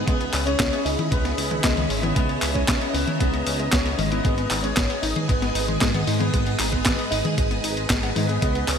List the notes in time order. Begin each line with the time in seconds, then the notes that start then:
Already playing: G#4
0.06 C#2 G#3 B3 C#4 D#5 E5 B5, kick, closed hi-hat
0.20 B3, closed hi-hat
0.34 C#2 C#4, clap, open hi-hat
0.46 G#3 C#4, closed hi-hat
0.60 C#2 G#3, kick, snare, clap, closed hi-hat
0.73 B3, closed hi-hat
0.85 C#2 C#4 D#4, open hi-hat
0.99 E4, closed hi-hat, high tom
1.11 C#2 G#3 B3, kick, closed hi-hat
1.25 B3, snare, closed hi-hat
1.38 C#2 C#4, open hi-hat
1.51 G#3, closed hi-hat, high tom
1.63 C#2 G#3, kick, snare, clap, closed hi-hat
1.77 B3, closed hi-hat, high tom
1.89 G#1 G#3 C#4, open hi-hat
2.02 B3 E4, closed hi-hat, high tom
2.15 C#2 G#3 B3 A#5, kick, closed hi-hat
2.29 B3, closed hi-hat
2.42 C#2 C#4, clap, open hi-hat
2.54 G#3 C#4, kick, closed hi-hat
2.68 C#2 G#3, kick, snare, clap, closed hi-hat
2.81 B3, closed hi-hat
2.93 C#2 B3 C#4, open hi-hat
3.07 E4, closed hi-hat, high tom
3.19 C#2 G#3 B3, kick, closed hi-hat
3.34 B3, closed hi-hat
3.47 C#2 C#4, open hi-hat
3.60 G#3, closed hi-hat
3.71 C#2 G#3 C#4, kick, snare, clap, closed hi-hat
3.86 B3, snare, closed hi-hat
3.97 G#1 G#3 C#4, open hi-hat, high tom
4.10 B3 E4, closed hi-hat
4.23 G#1 G#3 B3 G#4 B4 D#6, kick, closed hi-hat
4.38 B3, closed hi-hat
4.51 G#1 D#4, clap, open hi-hat
4.62 G#3 C#4, closed hi-hat
4.77 G#1 G#3, kick, snare, clap, closed hi-hat
4.90 B3, closed hi-hat
5.02 G#1 D#4, open hi-hat
5.16 G#4, closed hi-hat, high tom
5.28 G#1 G#3 B3, kick, closed hi-hat
5.42 B3, snare, closed hi-hat
5.55 G#1 D#4, open hi-hat
5.68 G#3, closed hi-hat, high tom
5.80 G#1 G#3, kick, snare, clap, closed hi-hat
5.94 B3, closed hi-hat, high tom
6.06 G#2 G#3 D#4, open hi-hat
6.19 B3 G#4, closed hi-hat, high tom
6.33 G#1 G#3, kick, closed hi-hat
6.46 B3, closed hi-hat
6.59 G#1 D#4, clap, open hi-hat
6.71 G#3 B3, kick, closed hi-hat
6.86 G#1 G#3, kick, snare, clap, closed hi-hat
6.99 B3, closed hi-hat
7.10 G#1 D#4, open hi-hat
7.25 G#4, closed hi-hat, high tom
7.38 G#1 G#3, kick, closed hi-hat
7.51 B3, closed hi-hat
7.64 G#1 D#4, open hi-hat
7.77 G#3, closed hi-hat
7.90 G#1 G#3, kick, snare, clap, closed hi-hat
8.03 B3, snare, closed hi-hat
8.15 G#2 G#3 D#4, open hi-hat, high tom
8.28 B3 G#4, closed hi-hat
8.41 C#2 G#3 B3 C#4 E5, kick, closed hi-hat
8.55 B3, closed hi-hat
8.68 C#2 C#4, clap, open hi-hat